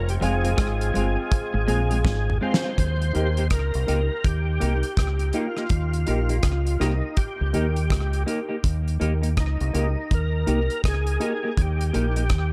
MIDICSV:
0, 0, Header, 1, 8, 480
1, 0, Start_track
1, 0, Tempo, 732422
1, 1821, Time_signature, 4, 2, 24, 8
1, 8210, End_track
2, 0, Start_track
2, 0, Title_t, "Tonewheel organ"
2, 0, Program_c, 0, 16
2, 64, Note_on_c, 0, 67, 92
2, 102, Note_off_c, 0, 67, 0
2, 149, Note_on_c, 0, 68, 90
2, 1559, Note_off_c, 0, 68, 0
2, 1589, Note_on_c, 0, 72, 108
2, 1819, Note_off_c, 0, 72, 0
2, 1827, Note_on_c, 0, 72, 98
2, 2278, Note_off_c, 0, 72, 0
2, 2310, Note_on_c, 0, 70, 88
2, 2788, Note_on_c, 0, 67, 85
2, 2800, Note_off_c, 0, 70, 0
2, 3504, Note_on_c, 0, 65, 89
2, 3526, Note_off_c, 0, 67, 0
2, 4468, Note_on_c, 0, 63, 78
2, 4492, Note_off_c, 0, 65, 0
2, 4702, Note_on_c, 0, 67, 80
2, 4712, Note_off_c, 0, 63, 0
2, 5396, Note_off_c, 0, 67, 0
2, 6161, Note_on_c, 0, 63, 83
2, 6646, Note_off_c, 0, 63, 0
2, 6646, Note_on_c, 0, 70, 97
2, 7088, Note_off_c, 0, 70, 0
2, 7130, Note_on_c, 0, 68, 97
2, 7610, Note_off_c, 0, 68, 0
2, 7613, Note_on_c, 0, 67, 80
2, 8210, Note_off_c, 0, 67, 0
2, 8210, End_track
3, 0, Start_track
3, 0, Title_t, "Upright piano"
3, 0, Program_c, 1, 0
3, 135, Note_on_c, 1, 60, 93
3, 138, Note_on_c, 1, 65, 89
3, 142, Note_on_c, 1, 68, 112
3, 280, Note_off_c, 1, 60, 0
3, 281, Note_off_c, 1, 65, 0
3, 283, Note_off_c, 1, 68, 0
3, 617, Note_on_c, 1, 60, 88
3, 622, Note_on_c, 1, 65, 71
3, 626, Note_on_c, 1, 68, 94
3, 761, Note_off_c, 1, 60, 0
3, 763, Note_off_c, 1, 65, 0
3, 765, Note_off_c, 1, 68, 0
3, 1096, Note_on_c, 1, 60, 95
3, 1100, Note_on_c, 1, 65, 84
3, 1102, Note_on_c, 1, 68, 109
3, 1240, Note_off_c, 1, 60, 0
3, 1242, Note_off_c, 1, 65, 0
3, 1243, Note_off_c, 1, 68, 0
3, 1578, Note_on_c, 1, 60, 92
3, 1582, Note_on_c, 1, 65, 69
3, 1586, Note_on_c, 1, 68, 95
3, 1719, Note_off_c, 1, 65, 0
3, 1719, Note_off_c, 1, 68, 0
3, 1721, Note_off_c, 1, 60, 0
3, 1729, Note_on_c, 1, 65, 25
3, 1729, Note_on_c, 1, 68, 26
3, 1766, Note_off_c, 1, 65, 0
3, 1766, Note_off_c, 1, 68, 0
3, 2052, Note_on_c, 1, 63, 80
3, 2057, Note_on_c, 1, 67, 73
3, 2060, Note_on_c, 1, 70, 90
3, 2198, Note_off_c, 1, 63, 0
3, 2201, Note_off_c, 1, 67, 0
3, 2203, Note_off_c, 1, 70, 0
3, 2532, Note_on_c, 1, 63, 74
3, 2538, Note_on_c, 1, 67, 68
3, 2540, Note_on_c, 1, 70, 90
3, 2679, Note_off_c, 1, 63, 0
3, 2682, Note_off_c, 1, 67, 0
3, 2683, Note_off_c, 1, 70, 0
3, 3015, Note_on_c, 1, 63, 86
3, 3020, Note_on_c, 1, 67, 78
3, 3024, Note_on_c, 1, 70, 88
3, 3160, Note_off_c, 1, 63, 0
3, 3163, Note_off_c, 1, 67, 0
3, 3165, Note_off_c, 1, 70, 0
3, 3496, Note_on_c, 1, 63, 81
3, 3499, Note_on_c, 1, 67, 68
3, 3503, Note_on_c, 1, 70, 84
3, 3641, Note_off_c, 1, 63, 0
3, 3642, Note_off_c, 1, 67, 0
3, 3645, Note_off_c, 1, 70, 0
3, 3972, Note_on_c, 1, 63, 89
3, 3976, Note_on_c, 1, 67, 78
3, 3981, Note_on_c, 1, 70, 94
3, 4119, Note_off_c, 1, 63, 0
3, 4121, Note_off_c, 1, 67, 0
3, 4124, Note_off_c, 1, 70, 0
3, 4454, Note_on_c, 1, 63, 78
3, 4458, Note_on_c, 1, 67, 72
3, 4462, Note_on_c, 1, 70, 78
3, 4600, Note_off_c, 1, 63, 0
3, 4602, Note_off_c, 1, 67, 0
3, 4604, Note_off_c, 1, 70, 0
3, 4936, Note_on_c, 1, 63, 83
3, 4940, Note_on_c, 1, 67, 81
3, 4944, Note_on_c, 1, 70, 103
3, 5081, Note_off_c, 1, 63, 0
3, 5083, Note_off_c, 1, 67, 0
3, 5085, Note_off_c, 1, 70, 0
3, 5416, Note_on_c, 1, 63, 78
3, 5418, Note_on_c, 1, 67, 75
3, 5424, Note_on_c, 1, 70, 87
3, 5560, Note_off_c, 1, 67, 0
3, 5560, Note_off_c, 1, 70, 0
3, 5561, Note_off_c, 1, 63, 0
3, 5569, Note_on_c, 1, 67, 25
3, 5570, Note_on_c, 1, 70, 26
3, 5607, Note_off_c, 1, 67, 0
3, 5607, Note_off_c, 1, 70, 0
3, 5896, Note_on_c, 1, 63, 89
3, 5900, Note_on_c, 1, 67, 78
3, 5905, Note_on_c, 1, 70, 96
3, 6041, Note_off_c, 1, 63, 0
3, 6043, Note_off_c, 1, 67, 0
3, 6046, Note_off_c, 1, 70, 0
3, 6377, Note_on_c, 1, 63, 79
3, 6382, Note_on_c, 1, 67, 67
3, 6385, Note_on_c, 1, 70, 77
3, 6522, Note_off_c, 1, 63, 0
3, 6524, Note_off_c, 1, 67, 0
3, 6526, Note_off_c, 1, 70, 0
3, 6860, Note_on_c, 1, 63, 92
3, 6862, Note_on_c, 1, 67, 78
3, 6868, Note_on_c, 1, 70, 89
3, 7003, Note_off_c, 1, 63, 0
3, 7004, Note_off_c, 1, 67, 0
3, 7007, Note_off_c, 1, 70, 0
3, 7338, Note_on_c, 1, 63, 78
3, 7343, Note_on_c, 1, 67, 67
3, 7348, Note_on_c, 1, 70, 88
3, 7482, Note_off_c, 1, 63, 0
3, 7485, Note_off_c, 1, 67, 0
3, 7487, Note_off_c, 1, 70, 0
3, 7819, Note_on_c, 1, 63, 87
3, 7823, Note_on_c, 1, 67, 85
3, 7827, Note_on_c, 1, 70, 104
3, 7962, Note_off_c, 1, 63, 0
3, 7965, Note_off_c, 1, 67, 0
3, 7967, Note_off_c, 1, 70, 0
3, 8210, End_track
4, 0, Start_track
4, 0, Title_t, "Clean electric guitar"
4, 0, Program_c, 2, 27
4, 140, Note_on_c, 2, 56, 76
4, 146, Note_on_c, 2, 60, 86
4, 149, Note_on_c, 2, 65, 97
4, 216, Note_off_c, 2, 56, 0
4, 219, Note_off_c, 2, 60, 0
4, 220, Note_off_c, 2, 65, 0
4, 285, Note_on_c, 2, 65, 72
4, 292, Note_on_c, 2, 60, 69
4, 295, Note_on_c, 2, 56, 53
4, 324, Note_off_c, 2, 65, 0
4, 327, Note_off_c, 2, 60, 0
4, 328, Note_off_c, 2, 56, 0
4, 619, Note_on_c, 2, 56, 82
4, 626, Note_on_c, 2, 60, 87
4, 629, Note_on_c, 2, 65, 79
4, 695, Note_off_c, 2, 56, 0
4, 699, Note_off_c, 2, 60, 0
4, 700, Note_off_c, 2, 65, 0
4, 1096, Note_on_c, 2, 56, 85
4, 1101, Note_on_c, 2, 60, 89
4, 1106, Note_on_c, 2, 65, 89
4, 1174, Note_off_c, 2, 56, 0
4, 1176, Note_off_c, 2, 60, 0
4, 1179, Note_off_c, 2, 65, 0
4, 1245, Note_on_c, 2, 65, 67
4, 1251, Note_on_c, 2, 60, 62
4, 1255, Note_on_c, 2, 56, 52
4, 1284, Note_off_c, 2, 65, 0
4, 1287, Note_off_c, 2, 60, 0
4, 1289, Note_off_c, 2, 56, 0
4, 1578, Note_on_c, 2, 56, 90
4, 1585, Note_on_c, 2, 60, 93
4, 1588, Note_on_c, 2, 65, 85
4, 1655, Note_off_c, 2, 56, 0
4, 1658, Note_off_c, 2, 60, 0
4, 1660, Note_off_c, 2, 65, 0
4, 1730, Note_on_c, 2, 65, 74
4, 1738, Note_on_c, 2, 60, 65
4, 1741, Note_on_c, 2, 56, 64
4, 1766, Note_off_c, 2, 65, 0
4, 1771, Note_off_c, 2, 60, 0
4, 1772, Note_off_c, 2, 56, 0
4, 2063, Note_on_c, 2, 58, 73
4, 2069, Note_on_c, 2, 63, 76
4, 2072, Note_on_c, 2, 67, 84
4, 2137, Note_off_c, 2, 58, 0
4, 2141, Note_off_c, 2, 63, 0
4, 2142, Note_off_c, 2, 67, 0
4, 2213, Note_on_c, 2, 67, 60
4, 2219, Note_on_c, 2, 63, 49
4, 2221, Note_on_c, 2, 58, 48
4, 2248, Note_off_c, 2, 67, 0
4, 2251, Note_off_c, 2, 63, 0
4, 2252, Note_off_c, 2, 58, 0
4, 2539, Note_on_c, 2, 58, 78
4, 2543, Note_on_c, 2, 63, 85
4, 2548, Note_on_c, 2, 67, 85
4, 2616, Note_off_c, 2, 58, 0
4, 2617, Note_off_c, 2, 63, 0
4, 2620, Note_off_c, 2, 67, 0
4, 3016, Note_on_c, 2, 58, 77
4, 3024, Note_on_c, 2, 63, 79
4, 3026, Note_on_c, 2, 67, 83
4, 3094, Note_off_c, 2, 58, 0
4, 3098, Note_off_c, 2, 63, 0
4, 3099, Note_off_c, 2, 67, 0
4, 3497, Note_on_c, 2, 58, 81
4, 3501, Note_on_c, 2, 63, 97
4, 3506, Note_on_c, 2, 67, 79
4, 3575, Note_off_c, 2, 58, 0
4, 3577, Note_off_c, 2, 63, 0
4, 3579, Note_off_c, 2, 67, 0
4, 3649, Note_on_c, 2, 67, 62
4, 3655, Note_on_c, 2, 63, 53
4, 3657, Note_on_c, 2, 58, 45
4, 3686, Note_off_c, 2, 67, 0
4, 3689, Note_off_c, 2, 63, 0
4, 3690, Note_off_c, 2, 58, 0
4, 3979, Note_on_c, 2, 58, 69
4, 3983, Note_on_c, 2, 63, 74
4, 3986, Note_on_c, 2, 67, 80
4, 4056, Note_off_c, 2, 58, 0
4, 4058, Note_off_c, 2, 63, 0
4, 4059, Note_off_c, 2, 67, 0
4, 4123, Note_on_c, 2, 67, 61
4, 4127, Note_on_c, 2, 63, 59
4, 4131, Note_on_c, 2, 58, 58
4, 4163, Note_off_c, 2, 67, 0
4, 4165, Note_off_c, 2, 63, 0
4, 4167, Note_off_c, 2, 58, 0
4, 4454, Note_on_c, 2, 58, 67
4, 4460, Note_on_c, 2, 63, 82
4, 4465, Note_on_c, 2, 67, 86
4, 4533, Note_off_c, 2, 58, 0
4, 4536, Note_off_c, 2, 63, 0
4, 4539, Note_off_c, 2, 67, 0
4, 4936, Note_on_c, 2, 58, 81
4, 4943, Note_on_c, 2, 63, 89
4, 4944, Note_on_c, 2, 67, 90
4, 5014, Note_off_c, 2, 58, 0
4, 5018, Note_off_c, 2, 63, 0
4, 5019, Note_off_c, 2, 67, 0
4, 5415, Note_on_c, 2, 58, 86
4, 5419, Note_on_c, 2, 63, 82
4, 5423, Note_on_c, 2, 67, 91
4, 5494, Note_off_c, 2, 58, 0
4, 5496, Note_off_c, 2, 63, 0
4, 5498, Note_off_c, 2, 67, 0
4, 5561, Note_on_c, 2, 67, 77
4, 5565, Note_on_c, 2, 63, 63
4, 5570, Note_on_c, 2, 58, 57
4, 5603, Note_off_c, 2, 67, 0
4, 5605, Note_off_c, 2, 63, 0
4, 5607, Note_off_c, 2, 58, 0
4, 5897, Note_on_c, 2, 58, 79
4, 5902, Note_on_c, 2, 63, 75
4, 5909, Note_on_c, 2, 67, 89
4, 5975, Note_off_c, 2, 58, 0
4, 5978, Note_off_c, 2, 63, 0
4, 5981, Note_off_c, 2, 67, 0
4, 6040, Note_on_c, 2, 67, 63
4, 6045, Note_on_c, 2, 63, 55
4, 6051, Note_on_c, 2, 58, 54
4, 6082, Note_off_c, 2, 67, 0
4, 6084, Note_off_c, 2, 63, 0
4, 6087, Note_off_c, 2, 58, 0
4, 6379, Note_on_c, 2, 58, 79
4, 6384, Note_on_c, 2, 63, 74
4, 6389, Note_on_c, 2, 67, 81
4, 6456, Note_off_c, 2, 58, 0
4, 6459, Note_off_c, 2, 63, 0
4, 6461, Note_off_c, 2, 67, 0
4, 6858, Note_on_c, 2, 58, 88
4, 6863, Note_on_c, 2, 63, 91
4, 6867, Note_on_c, 2, 67, 93
4, 6935, Note_off_c, 2, 58, 0
4, 6938, Note_off_c, 2, 63, 0
4, 6940, Note_off_c, 2, 67, 0
4, 7338, Note_on_c, 2, 58, 77
4, 7344, Note_on_c, 2, 63, 80
4, 7347, Note_on_c, 2, 67, 89
4, 7416, Note_off_c, 2, 58, 0
4, 7419, Note_off_c, 2, 63, 0
4, 7420, Note_off_c, 2, 67, 0
4, 7490, Note_on_c, 2, 67, 68
4, 7496, Note_on_c, 2, 63, 59
4, 7500, Note_on_c, 2, 58, 57
4, 7527, Note_off_c, 2, 67, 0
4, 7530, Note_off_c, 2, 63, 0
4, 7532, Note_off_c, 2, 58, 0
4, 7819, Note_on_c, 2, 58, 75
4, 7825, Note_on_c, 2, 63, 73
4, 7829, Note_on_c, 2, 67, 73
4, 7896, Note_off_c, 2, 58, 0
4, 7899, Note_off_c, 2, 63, 0
4, 7901, Note_off_c, 2, 67, 0
4, 7970, Note_on_c, 2, 67, 57
4, 7972, Note_on_c, 2, 63, 64
4, 7979, Note_on_c, 2, 58, 52
4, 8007, Note_off_c, 2, 67, 0
4, 8008, Note_off_c, 2, 63, 0
4, 8011, Note_off_c, 2, 58, 0
4, 8210, End_track
5, 0, Start_track
5, 0, Title_t, "Trombone section"
5, 0, Program_c, 3, 61
5, 0, Note_on_c, 3, 56, 79
5, 0, Note_on_c, 3, 60, 84
5, 0, Note_on_c, 3, 65, 88
5, 1556, Note_off_c, 3, 60, 0
5, 1556, Note_off_c, 3, 65, 0
5, 1558, Note_off_c, 3, 56, 0
5, 8210, End_track
6, 0, Start_track
6, 0, Title_t, "Clean electric guitar"
6, 0, Program_c, 4, 27
6, 139, Note_on_c, 4, 41, 77
6, 283, Note_off_c, 4, 41, 0
6, 376, Note_on_c, 4, 44, 79
6, 522, Note_off_c, 4, 44, 0
6, 616, Note_on_c, 4, 43, 77
6, 706, Note_off_c, 4, 43, 0
6, 1009, Note_on_c, 4, 44, 77
6, 1064, Note_off_c, 4, 44, 0
6, 1099, Note_on_c, 4, 46, 81
6, 1244, Note_off_c, 4, 46, 0
6, 1345, Note_on_c, 4, 44, 85
6, 1488, Note_off_c, 4, 44, 0
6, 8210, End_track
7, 0, Start_track
7, 0, Title_t, "Fingered electric bass"
7, 0, Program_c, 5, 33
7, 0, Note_on_c, 5, 29, 114
7, 116, Note_off_c, 5, 29, 0
7, 143, Note_on_c, 5, 29, 102
7, 357, Note_off_c, 5, 29, 0
7, 384, Note_on_c, 5, 32, 97
7, 597, Note_off_c, 5, 32, 0
7, 630, Note_on_c, 5, 31, 87
7, 758, Note_off_c, 5, 31, 0
7, 1012, Note_on_c, 5, 32, 83
7, 1093, Note_off_c, 5, 32, 0
7, 1105, Note_on_c, 5, 34, 86
7, 1318, Note_off_c, 5, 34, 0
7, 1344, Note_on_c, 5, 32, 92
7, 1557, Note_off_c, 5, 32, 0
7, 1826, Note_on_c, 5, 39, 87
7, 2038, Note_off_c, 5, 39, 0
7, 2068, Note_on_c, 5, 39, 74
7, 2280, Note_off_c, 5, 39, 0
7, 2303, Note_on_c, 5, 37, 88
7, 2434, Note_off_c, 5, 37, 0
7, 2457, Note_on_c, 5, 36, 86
7, 2536, Note_off_c, 5, 36, 0
7, 2550, Note_on_c, 5, 37, 81
7, 2678, Note_off_c, 5, 37, 0
7, 2785, Note_on_c, 5, 39, 77
7, 2998, Note_off_c, 5, 39, 0
7, 3029, Note_on_c, 5, 36, 90
7, 3158, Note_off_c, 5, 36, 0
7, 3263, Note_on_c, 5, 37, 77
7, 3477, Note_off_c, 5, 37, 0
7, 3741, Note_on_c, 5, 39, 100
7, 3956, Note_off_c, 5, 39, 0
7, 3987, Note_on_c, 5, 34, 88
7, 4199, Note_off_c, 5, 34, 0
7, 4219, Note_on_c, 5, 37, 83
7, 4435, Note_off_c, 5, 37, 0
7, 4462, Note_on_c, 5, 36, 87
7, 4594, Note_off_c, 5, 36, 0
7, 4856, Note_on_c, 5, 37, 80
7, 4936, Note_off_c, 5, 37, 0
7, 4947, Note_on_c, 5, 39, 74
7, 5159, Note_off_c, 5, 39, 0
7, 5182, Note_on_c, 5, 37, 88
7, 5397, Note_off_c, 5, 37, 0
7, 5666, Note_on_c, 5, 39, 96
7, 5879, Note_off_c, 5, 39, 0
7, 5907, Note_on_c, 5, 39, 89
7, 6119, Note_off_c, 5, 39, 0
7, 6145, Note_on_c, 5, 37, 90
7, 6276, Note_off_c, 5, 37, 0
7, 6297, Note_on_c, 5, 36, 82
7, 6377, Note_off_c, 5, 36, 0
7, 6388, Note_on_c, 5, 37, 97
7, 6518, Note_off_c, 5, 37, 0
7, 6631, Note_on_c, 5, 39, 78
7, 6842, Note_off_c, 5, 39, 0
7, 6869, Note_on_c, 5, 36, 86
7, 6998, Note_off_c, 5, 36, 0
7, 7107, Note_on_c, 5, 37, 83
7, 7320, Note_off_c, 5, 37, 0
7, 7589, Note_on_c, 5, 39, 96
7, 7801, Note_off_c, 5, 39, 0
7, 7834, Note_on_c, 5, 34, 88
7, 8044, Note_off_c, 5, 34, 0
7, 8065, Note_on_c, 5, 39, 82
7, 8210, Note_off_c, 5, 39, 0
7, 8210, End_track
8, 0, Start_track
8, 0, Title_t, "Drums"
8, 57, Note_on_c, 9, 42, 55
8, 122, Note_off_c, 9, 42, 0
8, 146, Note_on_c, 9, 42, 77
8, 212, Note_off_c, 9, 42, 0
8, 292, Note_on_c, 9, 42, 58
8, 358, Note_off_c, 9, 42, 0
8, 379, Note_on_c, 9, 42, 91
8, 380, Note_on_c, 9, 36, 123
8, 382, Note_on_c, 9, 37, 124
8, 445, Note_off_c, 9, 36, 0
8, 445, Note_off_c, 9, 42, 0
8, 447, Note_off_c, 9, 37, 0
8, 532, Note_on_c, 9, 42, 60
8, 598, Note_off_c, 9, 42, 0
8, 624, Note_on_c, 9, 42, 86
8, 690, Note_off_c, 9, 42, 0
8, 863, Note_on_c, 9, 36, 123
8, 864, Note_on_c, 9, 42, 82
8, 928, Note_off_c, 9, 36, 0
8, 929, Note_off_c, 9, 42, 0
8, 1103, Note_on_c, 9, 42, 71
8, 1169, Note_off_c, 9, 42, 0
8, 1250, Note_on_c, 9, 42, 58
8, 1316, Note_off_c, 9, 42, 0
8, 1341, Note_on_c, 9, 36, 127
8, 1348, Note_on_c, 9, 38, 64
8, 1406, Note_off_c, 9, 36, 0
8, 1414, Note_off_c, 9, 38, 0
8, 1506, Note_on_c, 9, 45, 73
8, 1571, Note_off_c, 9, 45, 0
8, 1666, Note_on_c, 9, 38, 122
8, 1731, Note_off_c, 9, 38, 0
8, 1822, Note_on_c, 9, 36, 99
8, 1825, Note_on_c, 9, 42, 87
8, 1888, Note_off_c, 9, 36, 0
8, 1891, Note_off_c, 9, 42, 0
8, 1977, Note_on_c, 9, 42, 49
8, 2043, Note_off_c, 9, 42, 0
8, 2063, Note_on_c, 9, 42, 63
8, 2129, Note_off_c, 9, 42, 0
8, 2209, Note_on_c, 9, 42, 53
8, 2275, Note_off_c, 9, 42, 0
8, 2296, Note_on_c, 9, 42, 88
8, 2299, Note_on_c, 9, 36, 108
8, 2299, Note_on_c, 9, 37, 104
8, 2362, Note_off_c, 9, 42, 0
8, 2364, Note_off_c, 9, 36, 0
8, 2364, Note_off_c, 9, 37, 0
8, 2451, Note_on_c, 9, 42, 52
8, 2516, Note_off_c, 9, 42, 0
8, 2545, Note_on_c, 9, 42, 79
8, 2610, Note_off_c, 9, 42, 0
8, 2782, Note_on_c, 9, 36, 119
8, 2782, Note_on_c, 9, 42, 75
8, 2847, Note_off_c, 9, 36, 0
8, 2847, Note_off_c, 9, 42, 0
8, 3022, Note_on_c, 9, 42, 61
8, 3088, Note_off_c, 9, 42, 0
8, 3165, Note_on_c, 9, 42, 46
8, 3231, Note_off_c, 9, 42, 0
8, 3258, Note_on_c, 9, 36, 119
8, 3268, Note_on_c, 9, 37, 104
8, 3268, Note_on_c, 9, 42, 83
8, 3324, Note_off_c, 9, 36, 0
8, 3333, Note_off_c, 9, 42, 0
8, 3334, Note_off_c, 9, 37, 0
8, 3404, Note_on_c, 9, 42, 52
8, 3469, Note_off_c, 9, 42, 0
8, 3492, Note_on_c, 9, 42, 61
8, 3558, Note_off_c, 9, 42, 0
8, 3648, Note_on_c, 9, 37, 46
8, 3713, Note_off_c, 9, 37, 0
8, 3732, Note_on_c, 9, 42, 81
8, 3736, Note_on_c, 9, 36, 111
8, 3797, Note_off_c, 9, 42, 0
8, 3802, Note_off_c, 9, 36, 0
8, 3889, Note_on_c, 9, 42, 55
8, 3955, Note_off_c, 9, 42, 0
8, 3976, Note_on_c, 9, 42, 70
8, 4041, Note_off_c, 9, 42, 0
8, 4124, Note_on_c, 9, 42, 60
8, 4189, Note_off_c, 9, 42, 0
8, 4212, Note_on_c, 9, 42, 81
8, 4215, Note_on_c, 9, 36, 105
8, 4215, Note_on_c, 9, 37, 117
8, 4278, Note_off_c, 9, 42, 0
8, 4280, Note_off_c, 9, 37, 0
8, 4281, Note_off_c, 9, 36, 0
8, 4369, Note_on_c, 9, 42, 58
8, 4434, Note_off_c, 9, 42, 0
8, 4464, Note_on_c, 9, 37, 68
8, 4464, Note_on_c, 9, 42, 75
8, 4529, Note_off_c, 9, 37, 0
8, 4529, Note_off_c, 9, 42, 0
8, 4697, Note_on_c, 9, 42, 77
8, 4700, Note_on_c, 9, 36, 117
8, 4762, Note_off_c, 9, 42, 0
8, 4766, Note_off_c, 9, 36, 0
8, 4940, Note_on_c, 9, 42, 62
8, 5006, Note_off_c, 9, 42, 0
8, 5088, Note_on_c, 9, 42, 54
8, 5153, Note_off_c, 9, 42, 0
8, 5180, Note_on_c, 9, 36, 114
8, 5190, Note_on_c, 9, 37, 122
8, 5190, Note_on_c, 9, 42, 78
8, 5245, Note_off_c, 9, 36, 0
8, 5255, Note_off_c, 9, 37, 0
8, 5255, Note_off_c, 9, 42, 0
8, 5329, Note_on_c, 9, 42, 50
8, 5395, Note_off_c, 9, 42, 0
8, 5424, Note_on_c, 9, 42, 59
8, 5490, Note_off_c, 9, 42, 0
8, 5662, Note_on_c, 9, 36, 117
8, 5664, Note_on_c, 9, 42, 90
8, 5727, Note_off_c, 9, 36, 0
8, 5729, Note_off_c, 9, 42, 0
8, 5818, Note_on_c, 9, 42, 54
8, 5883, Note_off_c, 9, 42, 0
8, 5906, Note_on_c, 9, 42, 71
8, 5971, Note_off_c, 9, 42, 0
8, 6051, Note_on_c, 9, 42, 55
8, 6117, Note_off_c, 9, 42, 0
8, 6142, Note_on_c, 9, 36, 118
8, 6142, Note_on_c, 9, 42, 83
8, 6144, Note_on_c, 9, 37, 118
8, 6207, Note_off_c, 9, 36, 0
8, 6207, Note_off_c, 9, 42, 0
8, 6210, Note_off_c, 9, 37, 0
8, 6295, Note_on_c, 9, 42, 60
8, 6360, Note_off_c, 9, 42, 0
8, 6387, Note_on_c, 9, 42, 69
8, 6452, Note_off_c, 9, 42, 0
8, 6625, Note_on_c, 9, 42, 69
8, 6626, Note_on_c, 9, 36, 109
8, 6691, Note_off_c, 9, 42, 0
8, 6692, Note_off_c, 9, 36, 0
8, 6864, Note_on_c, 9, 42, 60
8, 6929, Note_off_c, 9, 42, 0
8, 7013, Note_on_c, 9, 42, 49
8, 7078, Note_off_c, 9, 42, 0
8, 7103, Note_on_c, 9, 36, 113
8, 7112, Note_on_c, 9, 37, 109
8, 7112, Note_on_c, 9, 42, 79
8, 7169, Note_off_c, 9, 36, 0
8, 7178, Note_off_c, 9, 37, 0
8, 7178, Note_off_c, 9, 42, 0
8, 7253, Note_on_c, 9, 42, 53
8, 7318, Note_off_c, 9, 42, 0
8, 7344, Note_on_c, 9, 42, 62
8, 7410, Note_off_c, 9, 42, 0
8, 7585, Note_on_c, 9, 36, 111
8, 7589, Note_on_c, 9, 42, 80
8, 7651, Note_off_c, 9, 36, 0
8, 7654, Note_off_c, 9, 42, 0
8, 7738, Note_on_c, 9, 42, 55
8, 7803, Note_off_c, 9, 42, 0
8, 7826, Note_on_c, 9, 42, 73
8, 7892, Note_off_c, 9, 42, 0
8, 7970, Note_on_c, 9, 42, 58
8, 8036, Note_off_c, 9, 42, 0
8, 8057, Note_on_c, 9, 42, 78
8, 8060, Note_on_c, 9, 37, 103
8, 8061, Note_on_c, 9, 36, 116
8, 8123, Note_off_c, 9, 42, 0
8, 8125, Note_off_c, 9, 37, 0
8, 8127, Note_off_c, 9, 36, 0
8, 8210, End_track
0, 0, End_of_file